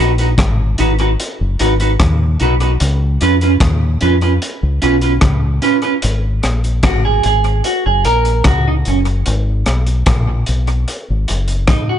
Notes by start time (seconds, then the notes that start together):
0.00 A#1 D#4 F#4 B4
0.18 D#4 F#4 B4, closed hi-hat
0.38 G#1, kick, cross-stick, closed hi-hat
0.78 G#1 D#4 F#4 B4, closed hi-hat
0.99 D#4 F#4 B4, closed hi-hat
1.20 closed hi-hat
1.41 F#1
1.59 G#1 D#4 F#4 B4, closed hi-hat
1.80 D#4 F#4 B4, closed hi-hat
2.00 D#2, kick, cross-stick, closed hi-hat
2.40 B1 D#4 F#4 B4, closed hi-hat
2.60 D#4 F#4 B4, closed hi-hat
2.80 C#2, closed hi-hat
3.21 F2 C#4 F4 B4, closed hi-hat
3.41 C#4 F4 B4, closed hi-hat
3.60 D#2, kick, cross-stick, closed hi-hat
4.01 F2 C#4 F4 B4, closed hi-hat
4.21 C#4 F4 B4, closed hi-hat
4.42 closed hi-hat
4.63 C#2
4.82 B1 C#4 F4 B4, closed hi-hat
5.01 C#4 F4 B4, closed hi-hat
5.21 C#2, kick, cross-stick, closed hi-hat
5.62 C#4 F4 B4, closed hi-hat
5.82 C#4 F4 B4, closed hi-hat
6.02 G#1, closed hi-hat
6.43 A#1, cross-stick, closed hi-hat
6.64 closed hi-hat
6.83 G#1 F#4, kick, cross-stick, closed hi-hat
7.05 G#4
7.23 G#1 G#4, closed hi-hat
7.44 closed hi-hat
7.64 F#4, closed hi-hat
7.86 F#1 G#4
8.05 A#1 A#4, closed hi-hat
8.25 closed hi-hat
8.44 C#2 F#4, kick, cross-stick, closed hi-hat
8.68 D#4
8.85 F#1 C#4, closed hi-hat
9.05 closed hi-hat
9.26 G#1, closed hi-hat
9.66 B1, cross-stick, closed hi-hat
9.87 closed hi-hat
10.06 A#1, kick, cross-stick, closed hi-hat
10.46 B1, closed hi-hat
10.67 closed hi-hat
10.88 closed hi-hat
11.10 G#1
11.28 F#1, closed hi-hat
11.48 closed hi-hat
11.68 D#4, kick, cross-stick, closed hi-hat
11.89 F#4